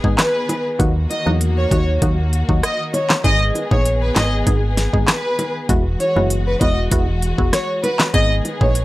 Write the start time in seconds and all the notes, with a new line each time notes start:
Already playing: D#3 B3 G#4
0.04 G#1 G#3 B3 D#4 G#4, kick
0.18 B4, cross-stick, snare, clap, closed hi-hat
0.49 closed hi-hat, high bongo, low bongo
0.79 D#2 F#3 A#3 D#4 F#4, kick, closed hi-hat
1.10 D#5, closed hi-hat, high bongo
1.26 E2 F#3 A#3 D#4 F#4, high bongo
1.41 closed hi-hat
1.57 C#5
1.71 D#2 F#3 A#3 D#4 F#4 C#5, kick, closed hi-hat, high bongo, low bongo
2.02 D#2 F#3 A#3 D#4 F#4, kick, closed hi-hat
2.33 closed hi-hat
2.49 D#2 F#3 A#3 D#4 F#4, kick
2.63 D#5, cross-stick, closed hi-hat
2.94 C#5, closed hi-hat, high bongo, low bongo
3.10 snare, clap
3.24 G#1 G#3 B3 D#4 G#4 D#5, kick, closed hi-hat
3.55 closed hi-hat, high bongo
3.71 A#1 G#3 B3 D#4 G#4 C#5, kick, high bongo
3.85 closed hi-hat
4.02 B4
4.16 G#1 D#5, snare, clap, closed hi-hat, high bongo, low bongo
4.47 G#1 G#3 B3 D#4 G#4, kick, closed hi-hat
4.77 snare, closed hi-hat
4.93 G#1 G#3 B3 D#4 G#4, kick
5.08 B4, cross-stick, snare, clap, closed hi-hat
5.39 closed hi-hat, high bongo, low bongo
5.69 E1 E3 G#3 B3 E4 F#4, kick, closed hi-hat
6.00 C#5, closed hi-hat, high bongo
6.16 F#1 G#3 B3 E4 F#4, high bongo
6.30 closed hi-hat
6.47 B4
6.61 E1 G#3 B3 E4 F#4 D#5, kick, closed hi-hat, high bongo, low bongo
6.91 E1 G#3 B3 E4 F#4, kick, closed hi-hat
7.22 closed hi-hat
7.38 E1 G#3 B3 E4 F#4, kick
7.53 C#5, cross-stick, snare, closed hi-hat
7.83 B4, closed hi-hat, high bongo, low bongo
7.99 snare, clap
8.14 G#1 D#3 G#3 B3 D#4 G#4 D#5, kick, closed hi-hat
8.45 closed hi-hat, high bongo
8.61 A#1 G#3 B3 D#4 G#4 C#5, kick, high bongo
8.75 closed hi-hat